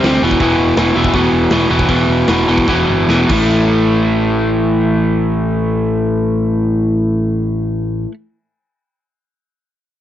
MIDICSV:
0, 0, Header, 1, 4, 480
1, 0, Start_track
1, 0, Tempo, 371058
1, 521, Time_signature, 4, 2, 24, 8
1, 2449, Tempo, 398936
1, 3889, Tempo, 430108
1, 11608, End_track
2, 0, Start_track
2, 0, Title_t, "Overdriven electric guitar"
2, 0, Program_c, 0, 29
2, 53, Note_on_c, 0, 48, 83
2, 62, Note_on_c, 0, 55, 81
2, 68, Note_on_c, 0, 60, 100
2, 273, Note_off_c, 0, 48, 0
2, 280, Note_off_c, 0, 60, 0
2, 291, Note_on_c, 0, 40, 97
2, 301, Note_on_c, 0, 47, 114
2, 303, Note_off_c, 0, 55, 0
2, 309, Note_on_c, 0, 52, 123
2, 515, Note_off_c, 0, 40, 0
2, 517, Note_off_c, 0, 47, 0
2, 521, Note_on_c, 0, 40, 105
2, 533, Note_on_c, 0, 47, 100
2, 534, Note_off_c, 0, 52, 0
2, 539, Note_on_c, 0, 52, 101
2, 987, Note_off_c, 0, 47, 0
2, 991, Note_off_c, 0, 40, 0
2, 996, Note_on_c, 0, 40, 79
2, 1003, Note_on_c, 0, 47, 87
2, 1006, Note_off_c, 0, 52, 0
2, 1011, Note_on_c, 0, 52, 101
2, 1225, Note_off_c, 0, 40, 0
2, 1226, Note_off_c, 0, 47, 0
2, 1230, Note_on_c, 0, 40, 81
2, 1242, Note_on_c, 0, 47, 88
2, 1247, Note_off_c, 0, 52, 0
2, 1252, Note_on_c, 0, 52, 87
2, 1457, Note_off_c, 0, 40, 0
2, 1463, Note_off_c, 0, 47, 0
2, 1473, Note_on_c, 0, 40, 88
2, 1479, Note_on_c, 0, 47, 105
2, 1481, Note_off_c, 0, 52, 0
2, 1486, Note_on_c, 0, 52, 101
2, 1942, Note_off_c, 0, 40, 0
2, 1946, Note_off_c, 0, 47, 0
2, 1957, Note_on_c, 0, 40, 72
2, 1961, Note_on_c, 0, 47, 80
2, 1963, Note_off_c, 0, 52, 0
2, 1968, Note_on_c, 0, 52, 90
2, 2180, Note_off_c, 0, 40, 0
2, 2188, Note_off_c, 0, 47, 0
2, 2196, Note_on_c, 0, 40, 89
2, 2204, Note_on_c, 0, 47, 85
2, 2208, Note_off_c, 0, 52, 0
2, 2213, Note_on_c, 0, 52, 85
2, 2424, Note_off_c, 0, 40, 0
2, 2436, Note_off_c, 0, 47, 0
2, 2436, Note_off_c, 0, 52, 0
2, 2440, Note_on_c, 0, 40, 88
2, 2451, Note_on_c, 0, 47, 89
2, 2451, Note_on_c, 0, 52, 96
2, 2899, Note_off_c, 0, 40, 0
2, 2905, Note_off_c, 0, 47, 0
2, 2913, Note_off_c, 0, 52, 0
2, 2913, Note_on_c, 0, 40, 82
2, 2919, Note_on_c, 0, 47, 93
2, 2928, Note_on_c, 0, 52, 88
2, 3131, Note_off_c, 0, 40, 0
2, 3141, Note_off_c, 0, 47, 0
2, 3145, Note_on_c, 0, 40, 78
2, 3149, Note_off_c, 0, 52, 0
2, 3156, Note_on_c, 0, 47, 90
2, 3163, Note_on_c, 0, 52, 88
2, 3381, Note_off_c, 0, 40, 0
2, 3388, Note_off_c, 0, 47, 0
2, 3393, Note_off_c, 0, 52, 0
2, 3395, Note_on_c, 0, 40, 96
2, 3402, Note_on_c, 0, 47, 91
2, 3408, Note_on_c, 0, 52, 100
2, 3874, Note_off_c, 0, 40, 0
2, 3883, Note_off_c, 0, 47, 0
2, 3887, Note_off_c, 0, 52, 0
2, 3889, Note_on_c, 0, 40, 85
2, 3897, Note_on_c, 0, 47, 82
2, 3901, Note_on_c, 0, 52, 92
2, 4112, Note_off_c, 0, 47, 0
2, 4117, Note_on_c, 0, 45, 85
2, 4124, Note_off_c, 0, 40, 0
2, 4126, Note_off_c, 0, 52, 0
2, 4140, Note_on_c, 0, 52, 105
2, 4163, Note_on_c, 0, 57, 88
2, 9473, Note_off_c, 0, 45, 0
2, 9496, Note_off_c, 0, 52, 0
2, 9520, Note_off_c, 0, 57, 0
2, 11608, End_track
3, 0, Start_track
3, 0, Title_t, "Picked electric bass"
3, 0, Program_c, 1, 34
3, 44, Note_on_c, 1, 38, 89
3, 222, Note_off_c, 1, 38, 0
3, 282, Note_on_c, 1, 28, 105
3, 459, Note_off_c, 1, 28, 0
3, 519, Note_on_c, 1, 28, 96
3, 696, Note_off_c, 1, 28, 0
3, 992, Note_on_c, 1, 28, 99
3, 1171, Note_off_c, 1, 28, 0
3, 1233, Note_on_c, 1, 28, 86
3, 1412, Note_off_c, 1, 28, 0
3, 1472, Note_on_c, 1, 28, 99
3, 1652, Note_off_c, 1, 28, 0
3, 1721, Note_on_c, 1, 28, 77
3, 1900, Note_off_c, 1, 28, 0
3, 1957, Note_on_c, 1, 28, 83
3, 2140, Note_off_c, 1, 28, 0
3, 2202, Note_on_c, 1, 28, 94
3, 2387, Note_off_c, 1, 28, 0
3, 2441, Note_on_c, 1, 28, 85
3, 2618, Note_off_c, 1, 28, 0
3, 2675, Note_on_c, 1, 28, 92
3, 2854, Note_off_c, 1, 28, 0
3, 2921, Note_on_c, 1, 28, 97
3, 3098, Note_off_c, 1, 28, 0
3, 3156, Note_on_c, 1, 28, 88
3, 3336, Note_off_c, 1, 28, 0
3, 3395, Note_on_c, 1, 28, 85
3, 3579, Note_off_c, 1, 28, 0
3, 3641, Note_on_c, 1, 31, 80
3, 3827, Note_off_c, 1, 31, 0
3, 3876, Note_on_c, 1, 28, 85
3, 4057, Note_off_c, 1, 28, 0
3, 4113, Note_on_c, 1, 33, 98
3, 9425, Note_off_c, 1, 33, 0
3, 11608, End_track
4, 0, Start_track
4, 0, Title_t, "Drums"
4, 45, Note_on_c, 9, 46, 59
4, 54, Note_on_c, 9, 38, 108
4, 175, Note_off_c, 9, 46, 0
4, 184, Note_off_c, 9, 38, 0
4, 402, Note_on_c, 9, 36, 90
4, 511, Note_on_c, 9, 46, 49
4, 520, Note_off_c, 9, 36, 0
4, 520, Note_on_c, 9, 36, 88
4, 640, Note_off_c, 9, 46, 0
4, 650, Note_off_c, 9, 36, 0
4, 992, Note_on_c, 9, 46, 58
4, 1001, Note_on_c, 9, 38, 115
4, 1121, Note_off_c, 9, 46, 0
4, 1130, Note_off_c, 9, 38, 0
4, 1351, Note_on_c, 9, 36, 90
4, 1466, Note_on_c, 9, 46, 49
4, 1470, Note_off_c, 9, 36, 0
4, 1470, Note_on_c, 9, 36, 98
4, 1595, Note_off_c, 9, 46, 0
4, 1600, Note_off_c, 9, 36, 0
4, 1944, Note_on_c, 9, 46, 56
4, 1953, Note_on_c, 9, 38, 111
4, 2073, Note_off_c, 9, 46, 0
4, 2082, Note_off_c, 9, 38, 0
4, 2320, Note_on_c, 9, 36, 90
4, 2437, Note_on_c, 9, 46, 58
4, 2443, Note_off_c, 9, 36, 0
4, 2443, Note_on_c, 9, 36, 82
4, 2558, Note_off_c, 9, 46, 0
4, 2564, Note_off_c, 9, 36, 0
4, 2907, Note_on_c, 9, 46, 62
4, 2916, Note_on_c, 9, 38, 119
4, 3027, Note_off_c, 9, 46, 0
4, 3036, Note_off_c, 9, 38, 0
4, 3271, Note_on_c, 9, 36, 89
4, 3392, Note_off_c, 9, 36, 0
4, 3393, Note_on_c, 9, 36, 99
4, 3394, Note_on_c, 9, 38, 59
4, 3513, Note_off_c, 9, 36, 0
4, 3515, Note_off_c, 9, 38, 0
4, 3885, Note_on_c, 9, 38, 84
4, 3997, Note_off_c, 9, 38, 0
4, 4115, Note_on_c, 9, 49, 90
4, 4119, Note_on_c, 9, 36, 100
4, 4227, Note_off_c, 9, 49, 0
4, 4231, Note_off_c, 9, 36, 0
4, 11608, End_track
0, 0, End_of_file